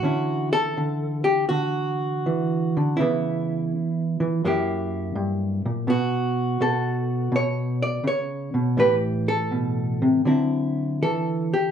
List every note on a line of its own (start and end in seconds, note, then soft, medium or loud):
0.00 0.76 D3 medium
0.00 2.25 E3 soft
0.00 0.52 F#4 medium
0.04 3.00 C#4 soft
0.04 2.96 E4 soft
0.53 1.24 A4 loud
0.77 1.49 D3 medium
1.24 1.48 G4 medium
1.49 2.75 D3 medium
1.49 2.97 F#4 medium
2.26 2.76 E3 medium
2.77 2.99 D3 medium
2.97 3.71 C#3 medium
2.97 4.19 E3 soft
2.97 4.42 E4 medium
3.01 4.41 B3 soft
4.20 4.43 E3 medium
4.45 5.15 F#2 medium
4.45 5.86 F#3 medium
4.45 5.86 A#3 medium
4.45 5.86 E4 medium
4.45 5.87 G4 medium
5.15 5.65 G2 medium
5.66 5.88 A#2 medium
5.87 6.60 B2 medium
5.87 8.75 B3 soft
5.87 7.33 F#4 medium
6.61 7.31 B2 medium
6.61 8.06 A4 medium
7.32 8.03 B2 medium
7.32 7.82 C#5 loud
7.82 8.05 D5 medium
8.04 8.54 C#3 medium
8.04 8.79 C#5 loud
8.54 8.77 B2 medium
8.77 10.22 A2 medium
8.77 10.26 E3 soft
8.77 10.23 G4 soft
8.77 8.96 B4 loud
9.28 11.01 A4 loud
9.51 10.01 B2 medium
10.02 10.25 C3 medium
10.25 11.71 D3 medium
10.25 11.02 F#3 soft
10.25 11.71 C4 soft
10.25 11.53 E4 soft
11.02 11.53 E3 medium
11.02 11.71 A4 medium
11.54 11.71 G4 medium